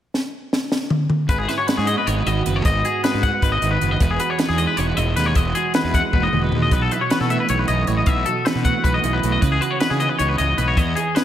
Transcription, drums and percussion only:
0.14 snare medium
0.53 snare medium
0.72 snare medium
0.90 mid tom medium
1.10 mid tom medium
1.29 kick medium
1.29 closed hi-hat medium
1.49 snare soft
1.49 closed hi-hat soft
1.68 snare medium
1.68 closed hi-hat medium
1.87 closed hi-hat medium
2.07 closed hi-hat medium
2.27 closed hi-hat medium
2.46 closed hi-hat medium
2.65 kick medium
2.65 closed hi-hat medium
2.85 closed hi-hat medium
3.04 snare medium
3.04 closed hi-hat medium
3.23 kick medium
3.23 closed hi-hat soft
3.42 kick medium
3.42 closed hi-hat medium
3.62 closed hi-hat medium
3.81 closed hi-hat soft
4.00 kick medium
4.00 closed hi-hat medium
4.20 closed hi-hat medium
4.39 snare medium
4.39 closed hi-hat medium
4.58 closed hi-hat soft
4.77 closed hi-hat medium
4.97 closed hi-hat medium
5.17 snare soft
5.17 closed hi-hat medium
5.35 kick medium
5.35 closed hi-hat medium
5.55 closed hi-hat medium
5.74 snare medium
5.74 closed hi-hat medium
5.94 kick medium
5.94 closed hi-hat medium
6.13 kick medium
6.13 high tom soft
6.33 mid tom medium
6.52 floor tom medium
6.71 kick medium
6.71 closed hi-hat medium
6.91 closed hi-hat soft
7.10 snare medium
7.10 closed hi-hat medium
7.30 closed hi-hat soft
7.49 closed hi-hat medium
7.68 closed hi-hat soft
7.87 closed hi-hat soft
8.06 kick medium
8.06 closed hi-hat medium
8.26 closed hi-hat medium
8.46 snare medium
8.46 closed hi-hat medium
8.65 kick medium
8.65 closed hi-hat medium
8.84 kick medium
8.84 closed hi-hat medium
9.04 closed hi-hat medium
9.23 closed hi-hat medium
9.42 kick medium
9.42 closed hi-hat medium
9.62 closed hi-hat medium
9.80 snare medium
9.80 closed hi-hat medium
10.00 closed hi-hat medium
10.19 closed hi-hat medium
10.38 closed hi-hat medium
10.58 closed hi-hat soft
10.77 kick medium
10.77 closed hi-hat medium
10.96 closed hi-hat medium
11.16 snare medium
11.16 closed hi-hat medium

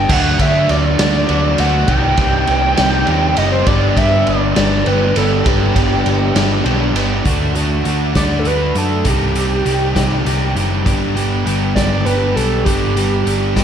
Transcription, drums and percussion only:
0.09 kick loud
0.09 crash loud
0.39 kick medium
0.39 ride medium
0.69 ride medium
0.99 snare loud
0.99 ride loud
1.29 ride medium
1.58 ride medium
1.88 kick loud
1.88 ride loud
2.17 kick medium
2.17 ride medium
2.47 ride medium
2.77 snare loud
2.77 ride medium
3.07 ride medium
3.37 ride medium
3.66 kick loud
3.66 ride loud
3.97 kick medium
3.97 ride medium
4.27 ride medium
4.56 snare loud
4.56 ride medium
4.86 ride medium
5.16 ride medium
5.46 kick loud
5.46 ride loud
5.76 kick medium
5.76 ride medium
6.06 ride medium
6.36 snare loud
6.36 ride loud
6.66 ride medium
6.96 ride medium
7.25 kick medium
7.25 closed hi-hat medium
7.55 closed hi-hat soft
7.85 closed hi-hat soft
8.15 kick medium
8.15 snare medium
8.15 closed hi-hat medium
8.45 closed hi-hat soft
8.75 closed hi-hat soft
9.05 kick medium
9.05 closed hi-hat medium
9.35 closed hi-hat medium
9.66 closed hi-hat medium
9.96 kick medium
9.96 snare medium
9.96 closed hi-hat medium
10.26 closed hi-hat medium
10.57 closed hi-hat medium
10.86 kick loud
10.86 closed hi-hat medium
11.17 closed hi-hat medium
11.47 closed hi-hat soft
11.76 kick medium
11.76 snare medium
11.76 closed hi-hat medium
12.06 closed hi-hat soft
12.37 closed hi-hat medium
12.66 kick medium
12.66 closed hi-hat medium
12.97 closed hi-hat medium
13.27 closed hi-hat soft
13.56 kick medium
13.56 snare medium
13.56 closed hi-hat medium

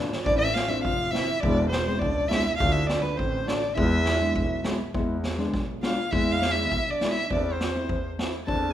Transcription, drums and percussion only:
0.13 snare medium
0.26 kick medium
0.56 snare medium
0.85 kick medium
1.14 snare medium
1.43 kick medium
1.72 snare medium
2.02 kick medium
2.31 snare medium
2.60 kick medium
2.89 snare medium
3.19 kick medium
3.48 snare medium
3.78 kick medium
4.05 snare medium
4.36 kick medium
4.64 snare medium
4.94 kick medium
5.24 snare medium
5.40 snare soft
5.54 kick medium
5.54 snare soft
5.83 snare medium
6.13 kick medium
6.42 snare medium
6.72 kick medium
7.01 snare medium
7.31 kick medium
7.61 snare medium
7.89 kick medium
8.19 snare medium
8.48 kick medium

